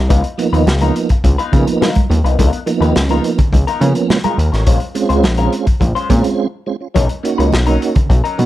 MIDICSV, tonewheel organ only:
0, 0, Header, 1, 2, 480
1, 0, Start_track
1, 0, Tempo, 570885
1, 88, Time_signature, 4, 2, 24, 8
1, 7110, End_track
2, 0, Start_track
2, 0, Title_t, "Tonewheel organ"
2, 0, Program_c, 0, 16
2, 317, Note_on_c, 0, 53, 116
2, 321, Note_on_c, 0, 58, 101
2, 326, Note_on_c, 0, 59, 97
2, 328, Note_on_c, 0, 63, 127
2, 561, Note_off_c, 0, 53, 0
2, 563, Note_off_c, 0, 58, 0
2, 565, Note_off_c, 0, 59, 0
2, 566, Note_off_c, 0, 63, 0
2, 677, Note_on_c, 0, 53, 93
2, 678, Note_on_c, 0, 58, 87
2, 681, Note_on_c, 0, 59, 87
2, 685, Note_on_c, 0, 63, 105
2, 920, Note_off_c, 0, 53, 0
2, 921, Note_off_c, 0, 58, 0
2, 922, Note_off_c, 0, 59, 0
2, 924, Note_off_c, 0, 63, 0
2, 1039, Note_on_c, 0, 59, 30
2, 1047, Note_on_c, 0, 65, 32
2, 1101, Note_off_c, 0, 59, 0
2, 1105, Note_off_c, 0, 65, 0
2, 1277, Note_on_c, 0, 53, 115
2, 1282, Note_on_c, 0, 58, 112
2, 1283, Note_on_c, 0, 59, 110
2, 1285, Note_on_c, 0, 63, 121
2, 1599, Note_off_c, 0, 53, 0
2, 1602, Note_off_c, 0, 58, 0
2, 1602, Note_off_c, 0, 59, 0
2, 1604, Note_off_c, 0, 63, 0
2, 1761, Note_on_c, 0, 53, 82
2, 1765, Note_on_c, 0, 58, 85
2, 1769, Note_on_c, 0, 59, 84
2, 1771, Note_on_c, 0, 63, 100
2, 1844, Note_off_c, 0, 53, 0
2, 1846, Note_off_c, 0, 58, 0
2, 1848, Note_off_c, 0, 59, 0
2, 1849, Note_off_c, 0, 63, 0
2, 1881, Note_on_c, 0, 59, 31
2, 1890, Note_on_c, 0, 63, 34
2, 1942, Note_off_c, 0, 59, 0
2, 1946, Note_off_c, 0, 63, 0
2, 2239, Note_on_c, 0, 53, 115
2, 2239, Note_on_c, 0, 58, 108
2, 2242, Note_on_c, 0, 59, 119
2, 2247, Note_on_c, 0, 63, 127
2, 2481, Note_off_c, 0, 53, 0
2, 2482, Note_off_c, 0, 58, 0
2, 2483, Note_off_c, 0, 59, 0
2, 2485, Note_off_c, 0, 63, 0
2, 2600, Note_on_c, 0, 53, 97
2, 2601, Note_on_c, 0, 58, 87
2, 2604, Note_on_c, 0, 59, 83
2, 2607, Note_on_c, 0, 63, 106
2, 2842, Note_off_c, 0, 53, 0
2, 2842, Note_off_c, 0, 58, 0
2, 2844, Note_off_c, 0, 59, 0
2, 2846, Note_off_c, 0, 63, 0
2, 2960, Note_on_c, 0, 59, 30
2, 2969, Note_on_c, 0, 63, 34
2, 3022, Note_off_c, 0, 59, 0
2, 3026, Note_off_c, 0, 63, 0
2, 3195, Note_on_c, 0, 53, 125
2, 3198, Note_on_c, 0, 58, 111
2, 3202, Note_on_c, 0, 59, 113
2, 3204, Note_on_c, 0, 61, 127
2, 3519, Note_off_c, 0, 53, 0
2, 3520, Note_off_c, 0, 58, 0
2, 3522, Note_off_c, 0, 59, 0
2, 3523, Note_off_c, 0, 61, 0
2, 3563, Note_on_c, 0, 68, 62
2, 3569, Note_on_c, 0, 65, 56
2, 3680, Note_off_c, 0, 68, 0
2, 3683, Note_off_c, 0, 65, 0
2, 3683, Note_on_c, 0, 70, 84
2, 3798, Note_off_c, 0, 70, 0
2, 3805, Note_on_c, 0, 73, 66
2, 3808, Note_on_c, 0, 70, 57
2, 4034, Note_off_c, 0, 73, 0
2, 4036, Note_off_c, 0, 70, 0
2, 4158, Note_on_c, 0, 56, 117
2, 4162, Note_on_c, 0, 60, 110
2, 4164, Note_on_c, 0, 61, 119
2, 4168, Note_on_c, 0, 65, 127
2, 4401, Note_off_c, 0, 56, 0
2, 4403, Note_off_c, 0, 60, 0
2, 4404, Note_off_c, 0, 61, 0
2, 4406, Note_off_c, 0, 65, 0
2, 4520, Note_on_c, 0, 56, 92
2, 4522, Note_on_c, 0, 60, 82
2, 4526, Note_on_c, 0, 61, 78
2, 4529, Note_on_c, 0, 65, 97
2, 4762, Note_off_c, 0, 56, 0
2, 4763, Note_off_c, 0, 60, 0
2, 4765, Note_off_c, 0, 61, 0
2, 4767, Note_off_c, 0, 65, 0
2, 4878, Note_on_c, 0, 61, 29
2, 4888, Note_on_c, 0, 63, 31
2, 4941, Note_off_c, 0, 61, 0
2, 4946, Note_off_c, 0, 63, 0
2, 5121, Note_on_c, 0, 56, 112
2, 5123, Note_on_c, 0, 60, 105
2, 5126, Note_on_c, 0, 61, 108
2, 5128, Note_on_c, 0, 65, 127
2, 5442, Note_off_c, 0, 56, 0
2, 5443, Note_off_c, 0, 60, 0
2, 5445, Note_off_c, 0, 61, 0
2, 5446, Note_off_c, 0, 65, 0
2, 5603, Note_on_c, 0, 56, 94
2, 5605, Note_on_c, 0, 60, 87
2, 5607, Note_on_c, 0, 61, 80
2, 5611, Note_on_c, 0, 65, 100
2, 5685, Note_off_c, 0, 56, 0
2, 5686, Note_off_c, 0, 60, 0
2, 5687, Note_off_c, 0, 61, 0
2, 5689, Note_off_c, 0, 65, 0
2, 5722, Note_on_c, 0, 61, 30
2, 5731, Note_on_c, 0, 65, 35
2, 5783, Note_off_c, 0, 61, 0
2, 5787, Note_off_c, 0, 65, 0
2, 6081, Note_on_c, 0, 58, 118
2, 6083, Note_on_c, 0, 61, 104
2, 6089, Note_on_c, 0, 63, 108
2, 6090, Note_on_c, 0, 66, 125
2, 6323, Note_off_c, 0, 58, 0
2, 6324, Note_off_c, 0, 61, 0
2, 6327, Note_off_c, 0, 63, 0
2, 6327, Note_off_c, 0, 66, 0
2, 6444, Note_on_c, 0, 58, 82
2, 6450, Note_on_c, 0, 61, 89
2, 6450, Note_on_c, 0, 63, 89
2, 6455, Note_on_c, 0, 66, 103
2, 6684, Note_off_c, 0, 58, 0
2, 6687, Note_off_c, 0, 63, 0
2, 6688, Note_off_c, 0, 61, 0
2, 6690, Note_off_c, 0, 66, 0
2, 6810, Note_on_c, 0, 63, 31
2, 6817, Note_on_c, 0, 65, 36
2, 6867, Note_off_c, 0, 63, 0
2, 6871, Note_off_c, 0, 65, 0
2, 7043, Note_on_c, 0, 58, 118
2, 7049, Note_on_c, 0, 61, 107
2, 7050, Note_on_c, 0, 63, 111
2, 7053, Note_on_c, 0, 66, 124
2, 7110, Note_off_c, 0, 58, 0
2, 7110, Note_off_c, 0, 61, 0
2, 7110, Note_off_c, 0, 63, 0
2, 7110, Note_off_c, 0, 66, 0
2, 7110, End_track
0, 0, End_of_file